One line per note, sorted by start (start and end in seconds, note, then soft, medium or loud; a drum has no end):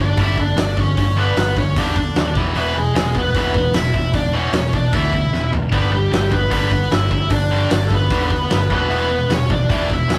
0.00 0.12 G1 medium
0.00 0.16 G2 medium
0.00 0.16 D3 medium
0.00 0.18 D4 medium
0.00 0.20 D5 medium
0.17 0.52 G1 medium
0.17 0.36 G2 medium
0.17 0.36 D3 loud
0.17 0.37 G3 medium
0.17 0.38 E4 medium
0.17 kick loud
0.17 open hi-hat medium
0.23 0.39 E5 medium
0.37 0.55 G2 medium
0.37 0.56 D3 medium
0.37 0.57 D4 medium
0.37 kick medium
0.41 0.58 D5 medium
0.56 0.74 G1 loud
0.56 0.75 G2 medium
0.56 0.75 D3 medium
0.56 0.77 D4 medium
0.56 0.80 D5 medium
0.56 snare loud
0.56 open hi-hat medium
0.77 0.94 G1 medium
0.77 0.95 G2 medium
0.77 0.95 D3 medium
0.77 1.15 C#4 medium
0.77 1.19 C#5 medium
0.77 kick medium
0.97 1.31 G1 medium
0.97 1.15 G2 medium
0.97 1.15 D3 medium
0.97 kick loud
0.97 open hi-hat medium
1.17 1.35 G2 loud
1.17 1.36 D3 loud
1.17 1.36 G3 medium
1.17 1.54 B3 medium
1.17 1.58 B4 medium
1.37 1.54 G1 loud
1.37 1.55 G2 medium
1.37 1.55 D3 medium
1.37 snare loud
1.37 open hi-hat medium
1.57 1.74 G1 medium
1.57 1.75 G2 medium
1.57 1.75 D3 medium
1.57 1.75 C#4 medium
1.57 1.79 C#5 medium
1.57 kick medium
1.76 2.10 E2 medium
1.76 1.95 G2 loud
1.76 1.96 D3 medium
1.76 1.96 G3 loud
1.76 2.32 D4 medium
1.76 2.37 D5 medium
1.76 kick loud
1.76 open hi-hat medium
1.96 2.14 G2 medium
1.96 2.14 D3 medium
1.96 kick medium
2.15 2.33 D#2 medium
2.15 2.34 G2 medium
2.15 2.34 D3 medium
2.15 snare loud
2.15 open hi-hat soft
2.35 2.52 E1 medium
2.35 2.54 E2 medium
2.35 2.55 B2 medium
2.35 2.55 E3 medium
2.35 kick loud
2.55 2.90 E1 medium
2.55 2.74 E2 medium
2.55 2.74 B2 medium
2.55 2.75 E3 loud
2.55 2.75 B3 medium
2.55 open hi-hat medium
2.59 2.78 B4 medium
2.75 2.93 E2 medium
2.75 2.93 B2 medium
2.75 2.93 G#3 medium
2.75 2.96 G#4 medium
2.95 3.29 E1 loud
2.95 3.13 E2 medium
2.95 3.13 B2 medium
2.95 3.13 G#3 medium
2.95 3.18 G#4 medium
2.95 snare loud
2.95 open hi-hat medium
3.15 3.33 E2 medium
3.15 3.33 B2 medium
3.15 3.34 B3 medium
3.15 3.36 B4 medium
3.15 kick medium
3.35 3.69 E1 medium
3.35 3.54 E2 medium
3.35 3.54 B2 loud
3.35 3.54 E3 loud
3.35 3.72 B3 medium
3.35 3.73 B4 medium
3.35 kick loud
3.35 open hi-hat medium
3.54 3.72 E2 medium
3.54 3.73 B2 medium
3.54 kick medium
3.74 3.91 E1 loud
3.74 3.92 E2 medium
3.74 3.92 B2 medium
3.74 4.12 E4 medium
3.74 4.13 E5 medium
3.74 snare loud
3.74 open hi-hat medium
3.93 4.11 E1 medium
3.93 4.12 E2 medium
3.93 4.12 B2 medium
3.93 kick medium
4.13 4.48 E1 medium
4.13 4.32 E2 medium
4.13 4.32 B2 medium
4.13 4.32 D4 medium
4.13 4.35 D5 loud
4.13 kick loud
4.13 open hi-hat medium
4.33 4.52 E2 medium
4.33 4.52 B2 medium
4.33 4.53 E3 medium
4.33 4.52 C#4 medium
4.33 4.56 C#5 medium
4.53 4.70 E1 loud
4.53 4.71 E2 medium
4.53 4.72 B2 medium
4.53 4.72 C#4 medium
4.53 snare loud
4.53 open hi-hat medium
4.57 4.74 C#5 medium
4.73 4.90 E1 medium
4.73 4.91 E2 medium
4.73 4.91 B2 medium
4.73 4.92 D4 medium
4.73 4.95 D5 medium
4.73 kick medium
4.92 5.27 D2 medium
4.92 5.12 E2 medium
4.92 5.12 B2 loud
4.92 5.13 E3 medium
4.92 5.49 E4 medium
4.92 5.50 E5 medium
4.92 kick loud
4.92 open hi-hat medium
5.13 5.31 E2 medium
5.13 5.31 B2 medium
5.13 kick medium
5.33 5.50 E1 loud
5.33 5.51 E2 medium
5.33 5.51 B2 medium
5.33 snare medium
5.52 5.70 E1 medium
5.52 5.71 E2 medium
5.52 5.70 B2 medium
5.52 floor tom medium
5.72 6.06 G1 medium
5.72 5.91 G2 medium
5.72 5.91 D3 medium
5.72 5.91 G3 loud
5.72 5.91 B3 medium
5.72 5.94 B4 loud
5.72 kick loud
5.72 open hi-hat medium
5.91 6.10 G2 medium
5.91 6.10 D3 medium
5.91 6.10 G3 medium
5.91 6.14 G4 medium
6.11 6.47 G1 loud
6.11 6.30 G2 medium
6.11 6.30 D3 medium
6.11 6.31 G3 medium
6.11 snare loud
6.11 open hi-hat medium
6.16 6.35 G4 medium
6.31 6.49 G2 medium
6.31 6.49 D3 medium
6.31 6.50 B3 medium
6.31 6.51 B4 medium
6.31 kick medium
6.50 6.85 G1 medium
6.50 6.70 G2 medium
6.50 6.70 D3 medium
6.50 6.70 G3 loud
6.50 6.88 B3 medium
6.50 6.90 B4 medium
6.50 kick loud
6.50 open hi-hat medium
6.71 6.89 G2 medium
6.71 6.89 D3 medium
6.71 kick medium
6.91 7.09 G1 loud
6.91 7.10 G2 medium
6.91 7.10 D3 medium
6.91 7.28 E4 medium
6.91 7.30 E5 medium
6.91 snare loud
6.91 open hi-hat medium
7.11 7.28 G1 medium
7.11 7.29 G2 medium
7.11 7.29 D3 medium
7.11 kick medium
7.30 7.65 G1 medium
7.30 7.49 G2 medium
7.30 7.49 D3 medium
7.30 7.68 D4 medium
7.30 7.69 D5 loud
7.30 kick loud
7.30 open hi-hat medium
7.51 7.69 G2 medium
7.51 7.70 D3 loud
7.51 7.70 G3 medium
7.70 7.88 G1 loud
7.70 7.89 G2 medium
7.70 7.89 D3 medium
7.70 7.83 D4 medium
7.70 snare loud
7.70 open hi-hat medium
7.75 7.86 D5 loud
7.85 7.91 A4 medium
7.90 8.08 G1 medium
7.90 8.09 G2 medium
7.90 8.09 D3 medium
7.90 8.67 B3 medium
7.90 8.68 B4 loud
7.90 kick medium
8.10 8.45 E2 medium
8.10 8.29 G2 medium
8.10 8.30 D3 loud
8.10 8.30 G3 loud
8.10 kick loud
8.10 open hi-hat medium
8.30 8.49 G2 medium
8.30 8.49 D3 medium
8.30 kick medium
8.50 8.68 G1 medium
8.50 8.68 G2 medium
8.50 8.69 D3 medium
8.50 snare loud
8.50 open hi-hat medium
8.70 8.87 E1 medium
8.70 8.88 E2 medium
8.70 8.89 B2 medium
8.70 8.89 E3 medium
8.70 9.27 B3 medium
8.70 kick medium
8.75 9.34 B4 medium
8.89 9.24 E1 medium
8.89 9.08 E2 medium
8.89 9.09 B2 loud
8.89 9.09 E3 loud
8.89 open hi-hat medium
9.10 9.28 E2 medium
9.10 9.28 B2 medium
9.30 9.64 E1 loud
9.30 9.48 E2 medium
9.30 9.48 B2 loud
9.30 9.49 C#4 medium
9.30 snare loud
9.30 open hi-hat medium
9.34 9.51 C#5 loud
9.49 9.68 E2 medium
9.49 9.68 B2 medium
9.49 9.87 D4 medium
9.49 9.92 D5 loud
9.49 kick medium
9.69 10.04 E1 medium
9.69 9.88 E2 medium
9.69 9.89 B2 medium
9.69 9.89 E3 loud
9.69 kick loud
9.69 open hi-hat soft
9.89 10.07 E2 medium
9.89 10.08 B2 medium
9.89 10.09 E4 medium
9.89 10.12 E5 medium
9.89 kick medium
10.08 10.19 E1 medium
10.08 10.19 E2 medium
10.08 10.19 B2 medium
10.08 10.19 C#4 medium
10.08 snare loud
10.08 open hi-hat medium
10.15 10.19 C#5 medium